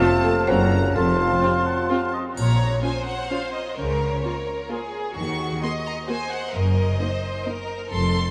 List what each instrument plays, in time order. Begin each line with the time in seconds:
Already playing: bassoon F3, french horn section A3 F4, clarinet C4, marimba C5, oboe F5, flute A5
0.00 viola section C3 F3, violin section A3 F4 A5
0.24 marimba A4
0.47 double bass section F#1, tuba F#1, cello section F#2, bassoon C#3, viola section F#3 A#3, violin section A#3 C#4 A#5, french horn section C#4 F#4, clarinet C#4, marimba C5, oboe F#5, flute A#5
0.72 marimba A#4
0.95 tuba F1, double bass section F1, cello section F2, bassoon F3, french horn section C4 F4, clarinet C4, marimba A4, oboe F5, violin section A5, flute C6
1.42 viola section C3 F3, violin section C4 F4, oboe F5
1.66 oboe F#5
1.90 viola section C3 F3, violin section C4 F4, oboe F5
2.13 oboe D#5
2.36 double bass section A#1, cello section A#2, violin section C#5 A#5, triangle
2.83 viola section C#4 F4, violin section C5 G#5
3.07 violin section F#5
3.30 viola section C#4 F4, violin section F5
3.54 violin section D#5
3.76 double bass section C#2, cello section C#3, violin section A#4 C#5
4.24 viola section A#3 F4, violin section A#4
4.69 viola section A#3 F4, violin section G#4
5.15 double bass section D#2, cello section D#3, violin section F#4 C#6
5.61 viola section A#3 F#4, violin section D#5 C6
5.86 violin section A#5
6.07 viola section A#3 F#4, violin section C5 G#5
6.31 violin section F#5
6.54 double bass section F#1, cello section F#2, violin section A#4 D#5
6.99 viola section A#3 D#4, violin section C5
7.46 viola section A#3 D#4, violin section A#4
7.91 double bass section F1, cello section F2, violin section A4 C6